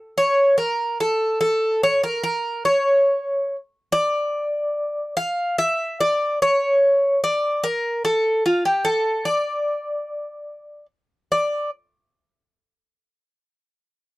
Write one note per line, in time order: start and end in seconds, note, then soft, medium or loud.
0.18 0.57 C#5 medium
0.58 0.97 A#4 medium
1.00 1.39 A4 medium
1.41 1.83 A4 medium
1.83 2.03 C#5 loud
2.03 2.22 A#4 medium
2.23 2.65 A#4 medium
2.65 3.56 C#5 medium
3.92 5.16 D5 loud
5.17 5.58 F5 loud
5.58 6.00 E5 loud
6.01 6.38 D5 medium
6.42 7.19 C#5 medium
7.24 7.65 D5 medium
7.64 8.04 A#4 loud
8.05 8.43 A4 medium
8.46 8.65 F4 medium
8.65 8.87 G4 medium
8.85 9.28 A4 medium
9.25 10.85 D5 medium
11.32 11.69 D5 medium